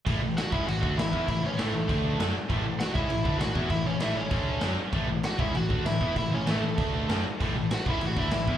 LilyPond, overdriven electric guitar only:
\new Staff \with { instrumentName = "Overdriven electric guitar" } { \time 4/4 \key a \major \tempo 4 = 196 r4 <fis' fis''>8 <e' e''>8 <fis' fis''>4 <e' e''>4 | <e' e''>8 <cis' cis''>8 <a a'>2~ <a a'>8 r8 | r4 <fis' fis''>8 <e' e''>4. <fis' fis''>4 | <e' e''>8 <cis' cis''>8 <e' e''>8 <cis' cis''>2 r8 |
r4 <fis' fis''>8 <e' e''>8 <fis' fis''>4 <e' e''>4 | <e' e''>8 <cis' cis''>8 <a a'>2~ <a a'>8 r8 | r4 <fis' fis''>8 <e' e''>8 <fis' fis''>8 <e' e''>4. | }